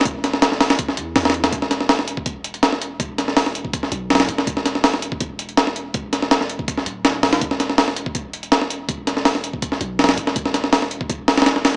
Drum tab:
HH |x---x---x---o-o-x---x---o-oox-x-|x---x---o---x---x---x-x-x---x---|x---x---o---x---x---x---ooo-x---|x---x---o---x---x---x-x-x---x---|
SD |----o-o-o-o-o-o---o-----o-oo--o-|--o-o-o-o-o-------------o-o-----|----o-o-o-o-------o-----ooo---o-|--o-o-o-o-o-------------o-o-----|
BD |o---------------o---------------|o-------------o-o---------------|o-------------o-o---------------|o-------------o-o---------------|

HH |x---x---x---x---x---x---x---o-o-|x---x---o---x---x---x-x-x---x---|x---x---o---x---x---x---ooo-x---|x---x---o---x---x---o-oox---o---|
SD |----o-o-o-o-------o-----o---o-o-|--o-o-o-o-o-------------o-o-----|----o-o-o-o-------o-----ooo---o-|--o-o-o-o-o---------o-ooo-o-o---|
BD |o-------------o-o---------------|o-------------o-o---------------|o-------------o-o---------------|o-------------o-o---------------|